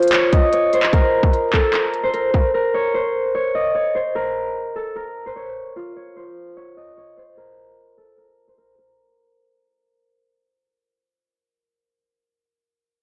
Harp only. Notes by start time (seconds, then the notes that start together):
Already playing: F4 A#4 C5
0.13 C#5
0.33 D#5
0.53 C#5
0.73 C5
0.93 A#4
1.53 A4
1.74 A#4
2.03 C5
2.14 A#4
2.34 A#4
2.54 A#4
2.74 C#5
2.94 C5
3.35 C#5
3.55 D#5
3.75 C#5
3.95 C5
4.15 A#4
4.76 A4
4.96 A#4
5.26 C5
5.36 C#5
5.76 F4
5.96 C#5
6.17 C5
6.57 C#5
6.77 D#5
6.97 C#5
7.17 C5
7.37 A#4
7.98 A4
8.18 A#4
8.48 C5
8.58 A#4
8.78 A#4